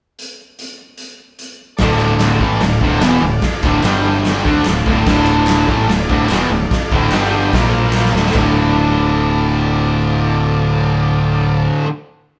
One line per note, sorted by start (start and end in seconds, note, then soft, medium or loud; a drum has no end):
0.19 closed hi-hat medium
0.59 closed hi-hat medium
0.98 closed hi-hat medium
1.39 closed hi-hat medium
1.77 2.37 D1 loud
1.77 2.41 D2 medium
1.77 3.79 A4 medium
1.77 3.79 D5 medium
1.77 3.80 F5 medium
1.77 kick loud
1.77 snare loud
1.77 open hi-hat medium
1.82 2.40 A2 loud
1.82 2.42 D3 loud
2.00 clap medium
2.19 snare loud
2.19 clap medium
2.19 open hi-hat medium
2.41 2.60 A1 loud
2.41 2.61 A2 loud
2.41 2.62 E3 loud
2.41 2.62 A3 loud
2.41 kick loud
2.60 2.80 D1 medium
2.60 2.78 D2 medium
2.60 2.79 A2 medium
2.60 snare loud
2.60 open hi-hat medium
2.81 3.00 D1 loud
2.81 3.01 D2 medium
2.81 3.01 A2 loud
2.81 3.03 D3 loud
2.81 kick medium
3.01 3.21 E1 medium
3.01 3.21 E2 medium
3.01 3.21 B2 loud
3.01 3.23 E3 loud
3.01 snare loud
3.01 clap loud
3.01 open hi-hat medium
3.22 3.41 D1 medium
3.22 3.39 D2 medium
3.22 3.39 A2 medium
3.41 muted distorted electric guitar stroke medium
3.41 kick loud
3.41 snare loud
3.41 open hi-hat medium
3.62 3.83 D1 medium
3.62 3.82 D2 medium
3.62 3.83 A2 medium
3.62 3.82 D3 loud
3.62 kick loud
3.62 clap medium
3.83 4.42 G1 loud
3.83 4.44 G2 loud
3.83 4.43 D3 loud
3.83 4.44 G3 loud
3.83 4.46 G4 medium
3.83 4.45 D5 medium
3.83 4.47 G5 medium
3.83 snare loud
3.83 clap loud
3.83 open hi-hat medium
4.24 snare loud
4.24 open hi-hat medium
4.44 4.65 D2 loud
4.44 4.65 D3 loud
4.44 4.65 A3 loud
4.44 4.66 D4 loud
4.44 7.08 A4 medium
4.44 7.09 D5 medium
4.44 7.09 F5 medium
4.44 kick medium
4.65 4.85 D1 medium
4.65 4.82 D2 medium
4.65 4.82 A2 medium
4.65 snare loud
4.65 clap loud
4.65 open hi-hat medium
4.85 5.06 D1 loud
4.85 5.05 D2 loud
4.85 5.07 A2 loud
4.85 5.07 D3 loud
4.85 kick loud
5.06 5.65 D1 loud
5.06 5.67 D2 medium
5.06 5.66 A2 loud
5.06 5.69 D3 loud
5.06 kick loud
5.06 snare loud
5.06 crash loud
5.26 clap medium
5.47 snare loud
5.47 clap loud
5.47 open hi-hat medium
5.68 5.87 A1 loud
5.68 5.88 A2 loud
5.68 5.89 E3 loud
5.68 5.89 A3 loud
5.68 kick loud
5.88 6.08 D1 medium
5.88 6.06 D2 medium
5.88 6.06 A2 medium
5.88 snare loud
5.88 open hi-hat medium
6.08 6.28 D1 loud
6.08 6.28 D2 loud
6.08 6.29 A2 medium
6.08 6.30 D3 loud
6.08 kick loud
6.29 6.49 E1 medium
6.29 6.49 E2 medium
6.29 6.50 B2 loud
6.29 6.50 E3 loud
6.29 snare loud
6.29 clap loud
6.29 open hi-hat medium
6.49 6.69 D1 medium
6.49 6.67 D2 medium
6.49 6.67 A2 medium
6.71 muted distorted electric guitar stroke medium
6.71 muted fingered electric bass stroke soft
6.71 kick loud
6.71 snare loud
6.71 open hi-hat medium
6.91 7.11 D1 medium
6.91 7.12 D2 loud
6.91 7.14 A2 medium
6.91 7.14 D3 loud
6.91 kick loud
7.09 7.50 G1 medium
7.09 7.52 G2 loud
7.09 7.52 G4 medium
7.09 7.52 D5 medium
7.09 7.53 G5 medium
7.09 clap loud
7.09 open hi-hat medium
7.13 7.53 D3 loud
7.13 7.54 G3 loud
7.13 snare loud
7.53 8.10 A#1 medium
7.53 8.13 A#2 medium
7.53 8.14 F3 loud
7.53 8.15 A#3 loud
7.53 8.15 F4 medium
7.53 8.15 A#4 medium
7.53 8.16 F5 medium
7.53 kick loud
7.53 snare loud
7.53 open hi-hat medium
7.93 snare medium
7.93 clap loud
8.05 snare medium
8.14 8.34 D1 loud
8.14 8.32 D2 loud
8.14 8.35 A2 loud
8.14 8.35 D3 loud
8.14 snare loud
8.26 snare medium
8.34 11.68 D1 loud
8.34 11.84 D2 medium
8.34 11.86 A2 loud
8.34 11.67 F4 medium
8.34 11.68 A4 medium
8.34 11.67 D5 medium
8.34 kick loud
8.34 clap medium
8.34 crash medium
8.38 11.88 D3 loud